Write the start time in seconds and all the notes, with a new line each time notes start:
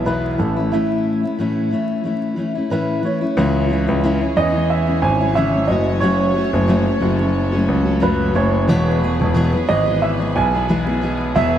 Already playing: B1
0.05 E2 B2 E3 G#3 B3 E4 B4
0.38 A1 E3 A3 C#4 E4 A4
0.56 A3 C#4 E4
0.72 A2 E3 A3 C#4 E4
1.23 A3 C#4 E4
1.39 A2 E3 A3 C#4 E4
1.71 E3 A3 C#4 E4
2.04 E3 A3 C#4 E4
2.36 E3 A3 C#4 E4
2.55 A3 C#4 E4
2.70 A2 E3 A3 C#4 E4 B4
3.02 E3 A3 C#4 E4 C#5
3.21 A3 C#4 E4
3.36 C#2 C#3 E3 G#3 C#4 E4 G#4 C#5
3.69 E3 G#3 C#4 E4
3.87 C#2 G#3 C#4 E4
4.03 C#3 E3 G#3 C#4 E4
4.21 G#3 C#4 E4
4.36 E2 E3 G#3 C#4 E4 D#5
4.53 G#3 C#4 E4
4.70 E5
4.87 G#3 C#4 E4
5.02 G#1 G#5
5.21 G#3 C#4 E4
5.35 C#3 E3 G#3 C#4 E4 E5
5.54 G#3 C#4 E4
5.68 F#1 F#3 A3 C#4 F#4 A4 D#5
6.00 F#2 C#3 F#3 A3 C#4 F#4 C#5
6.34 F#3 A3 C#4 F#4
6.52 F#1 F#3 A3 C#4 F#4
6.67 F#2 C#3 F#3 A3 C#4 F#4 C#5
6.86 F#3 A3 C#4 F#4
7.00 F#1 F#3 A3 C#4 F#4
7.18 F#3 A3 C#4 F#4
7.52 F#3 A3 C#4 F#4
7.68 C#2
7.85 F#3 A3 C#4 F#4
8.00 F#2 C#3 F#3 A3 C#4 F#4 B4
8.33 F#1 F#3 A3 C#4 F#4 C#5
8.68 E1 E2 B2 E3 G#3 B3 G#4 B4
9.01 E3 G#3 B3 G#4
9.20 E1 E3 G#3 B3 G#4
9.34 E2 B2 E3 G#3 B3 G#4
9.53 E3 G#3 B3 G#4
9.67 G#1 E3 G#3 B3 G#4 D#5
9.85 E3 G#3 B3 G#4
10.02 E5
10.20 E3 G#3 B3 G#4
10.36 B1 G#5
10.54 E3 G#3 B3 G#4
10.68 E2 B2 E3 G#3 B3 G#4
10.86 E3 G#3 B3 G#4
11.01 E3 G#3 B3 G#4
11.35 E1 E2 B2 E3 G#3 B3 G#4 C#5 E5